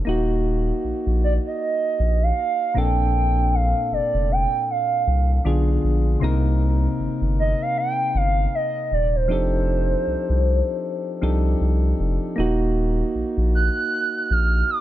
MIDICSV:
0, 0, Header, 1, 4, 480
1, 0, Start_track
1, 0, Tempo, 769231
1, 41, Time_signature, 4, 2, 24, 8
1, 9240, End_track
2, 0, Start_track
2, 0, Title_t, "Soft synth lead"
2, 0, Program_c, 0, 80
2, 772, Note_on_c, 0, 74, 86
2, 832, Note_off_c, 0, 74, 0
2, 911, Note_on_c, 0, 75, 102
2, 1391, Note_on_c, 0, 77, 107
2, 1401, Note_off_c, 0, 75, 0
2, 1732, Note_on_c, 0, 79, 117
2, 1741, Note_off_c, 0, 77, 0
2, 2213, Note_on_c, 0, 77, 98
2, 2223, Note_off_c, 0, 79, 0
2, 2447, Note_off_c, 0, 77, 0
2, 2452, Note_on_c, 0, 74, 94
2, 2694, Note_on_c, 0, 79, 103
2, 2703, Note_off_c, 0, 74, 0
2, 2927, Note_off_c, 0, 79, 0
2, 2936, Note_on_c, 0, 77, 89
2, 3383, Note_off_c, 0, 77, 0
2, 4614, Note_on_c, 0, 75, 96
2, 4753, Note_on_c, 0, 77, 102
2, 4763, Note_off_c, 0, 75, 0
2, 4853, Note_on_c, 0, 79, 113
2, 4863, Note_off_c, 0, 77, 0
2, 5095, Note_on_c, 0, 77, 107
2, 5104, Note_off_c, 0, 79, 0
2, 5334, Note_on_c, 0, 75, 96
2, 5344, Note_off_c, 0, 77, 0
2, 5575, Note_on_c, 0, 74, 92
2, 5584, Note_off_c, 0, 75, 0
2, 5714, Note_on_c, 0, 72, 91
2, 5724, Note_off_c, 0, 74, 0
2, 7248, Note_off_c, 0, 72, 0
2, 8455, Note_on_c, 0, 90, 123
2, 8936, Note_on_c, 0, 89, 106
2, 8946, Note_off_c, 0, 90, 0
2, 9174, Note_on_c, 0, 86, 93
2, 9183, Note_off_c, 0, 89, 0
2, 9240, Note_off_c, 0, 86, 0
2, 9240, End_track
3, 0, Start_track
3, 0, Title_t, "Synth keys"
3, 0, Program_c, 1, 88
3, 0, Control_c, 1, 64, 127
3, 31, Note_on_c, 1, 58, 72
3, 43, Note_on_c, 1, 63, 70
3, 50, Control_c, 1, 64, 0
3, 56, Note_on_c, 1, 66, 84
3, 156, Control_c, 1, 64, 127
3, 1691, Note_off_c, 1, 58, 0
3, 1697, Note_off_c, 1, 63, 0
3, 1703, Note_off_c, 1, 66, 0
3, 1710, Note_on_c, 1, 46, 65
3, 1716, Note_on_c, 1, 58, 63
3, 1723, Note_on_c, 1, 60, 63
3, 1728, Control_c, 1, 64, 0
3, 1729, Note_on_c, 1, 62, 63
3, 1736, Note_on_c, 1, 69, 78
3, 1840, Control_c, 1, 64, 127
3, 3370, Note_off_c, 1, 46, 0
3, 3373, Note_off_c, 1, 58, 0
3, 3377, Note_off_c, 1, 60, 0
3, 3380, Note_off_c, 1, 62, 0
3, 3383, Note_off_c, 1, 69, 0
3, 3398, Note_on_c, 1, 50, 65
3, 3401, Note_on_c, 1, 59, 57
3, 3404, Note_on_c, 1, 62, 60
3, 3407, Control_c, 1, 64, 0
3, 3407, Note_on_c, 1, 65, 57
3, 3411, Note_on_c, 1, 68, 72
3, 3506, Control_c, 1, 64, 127
3, 3869, Note_on_c, 1, 48, 80
3, 3876, Note_on_c, 1, 60, 69
3, 3879, Note_off_c, 1, 50, 0
3, 3881, Note_off_c, 1, 59, 0
3, 3882, Note_off_c, 1, 62, 0
3, 3882, Note_on_c, 1, 58, 71
3, 3884, Note_off_c, 1, 65, 0
3, 3885, Note_off_c, 1, 68, 0
3, 3888, Note_on_c, 1, 63, 71
3, 3889, Control_c, 1, 64, 0
3, 3895, Note_on_c, 1, 70, 85
3, 3999, Control_c, 1, 64, 127
3, 5770, Note_off_c, 1, 48, 0
3, 5773, Note_off_c, 1, 60, 0
3, 5776, Note_off_c, 1, 58, 0
3, 5779, Note_off_c, 1, 63, 0
3, 5782, Note_off_c, 1, 70, 0
3, 5790, Note_on_c, 1, 53, 63
3, 5795, Note_on_c, 1, 60, 59
3, 5800, Note_on_c, 1, 62, 60
3, 5806, Note_on_c, 1, 63, 59
3, 5807, Control_c, 1, 64, 0
3, 5810, Note_on_c, 1, 67, 61
3, 5816, Note_on_c, 1, 69, 68
3, 5925, Control_c, 1, 64, 127
3, 6971, Note_off_c, 1, 53, 0
3, 6974, Note_off_c, 1, 60, 0
3, 6976, Note_off_c, 1, 62, 0
3, 6979, Note_off_c, 1, 63, 0
3, 6981, Note_off_c, 1, 67, 0
3, 6984, Note_off_c, 1, 69, 0
3, 6998, Note_on_c, 1, 53, 61
3, 7001, Note_on_c, 1, 60, 60
3, 7003, Note_on_c, 1, 62, 56
3, 7006, Note_on_c, 1, 63, 57
3, 7008, Note_on_c, 1, 67, 57
3, 7010, Note_on_c, 1, 69, 70
3, 7711, Note_on_c, 1, 58, 81
3, 7718, Note_off_c, 1, 63, 0
3, 7719, Note_off_c, 1, 53, 0
3, 7720, Note_off_c, 1, 60, 0
3, 7722, Note_off_c, 1, 62, 0
3, 7724, Note_off_c, 1, 67, 0
3, 7725, Note_off_c, 1, 69, 0
3, 7725, Note_on_c, 1, 63, 75
3, 7728, Control_c, 1, 64, 0
3, 7737, Note_on_c, 1, 66, 87
3, 7838, Control_c, 1, 64, 127
3, 9240, Note_off_c, 1, 58, 0
3, 9240, Note_off_c, 1, 63, 0
3, 9240, Note_off_c, 1, 66, 0
3, 9240, End_track
4, 0, Start_track
4, 0, Title_t, "Sub bass"
4, 0, Program_c, 2, 38
4, 42, Note_on_c, 2, 27, 107
4, 448, Note_off_c, 2, 27, 0
4, 523, Note_on_c, 2, 34, 47
4, 578, Note_off_c, 2, 34, 0
4, 662, Note_on_c, 2, 34, 83
4, 864, Note_off_c, 2, 34, 0
4, 1243, Note_on_c, 2, 34, 84
4, 1445, Note_off_c, 2, 34, 0
4, 1722, Note_on_c, 2, 34, 99
4, 2332, Note_off_c, 2, 34, 0
4, 2442, Note_on_c, 2, 29, 48
4, 2497, Note_off_c, 2, 29, 0
4, 2581, Note_on_c, 2, 29, 89
4, 2784, Note_off_c, 2, 29, 0
4, 3162, Note_on_c, 2, 36, 97
4, 3365, Note_off_c, 2, 36, 0
4, 3401, Note_on_c, 2, 35, 102
4, 3604, Note_off_c, 2, 35, 0
4, 3642, Note_on_c, 2, 34, 99
4, 3845, Note_off_c, 2, 34, 0
4, 3881, Note_on_c, 2, 36, 106
4, 4288, Note_off_c, 2, 36, 0
4, 4361, Note_on_c, 2, 31, 49
4, 4416, Note_off_c, 2, 31, 0
4, 4500, Note_on_c, 2, 31, 96
4, 4703, Note_off_c, 2, 31, 0
4, 5082, Note_on_c, 2, 31, 102
4, 5285, Note_off_c, 2, 31, 0
4, 5562, Note_on_c, 2, 27, 97
4, 5802, Note_on_c, 2, 29, 94
4, 5811, Note_off_c, 2, 27, 0
4, 6208, Note_off_c, 2, 29, 0
4, 6282, Note_on_c, 2, 36, 46
4, 6337, Note_off_c, 2, 36, 0
4, 6421, Note_on_c, 2, 36, 88
4, 6624, Note_off_c, 2, 36, 0
4, 7002, Note_on_c, 2, 36, 91
4, 7205, Note_off_c, 2, 36, 0
4, 7242, Note_on_c, 2, 36, 89
4, 7445, Note_off_c, 2, 36, 0
4, 7483, Note_on_c, 2, 29, 89
4, 7600, Note_off_c, 2, 29, 0
4, 7724, Note_on_c, 2, 27, 104
4, 8130, Note_off_c, 2, 27, 0
4, 8203, Note_on_c, 2, 34, 48
4, 8258, Note_off_c, 2, 34, 0
4, 8342, Note_on_c, 2, 34, 89
4, 8545, Note_off_c, 2, 34, 0
4, 8924, Note_on_c, 2, 34, 91
4, 9126, Note_off_c, 2, 34, 0
4, 9240, End_track
0, 0, End_of_file